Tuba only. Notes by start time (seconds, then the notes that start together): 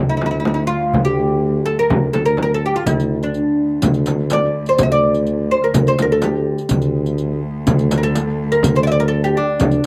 Already playing: D2
0.94 D2
1.90 D2
2.13 D2
2.85 D2
3.82 D2
4.78 D2
5.75 D2
6.00 D2
6.71 D2
7.67 D2
8.63 D2
9.60 D2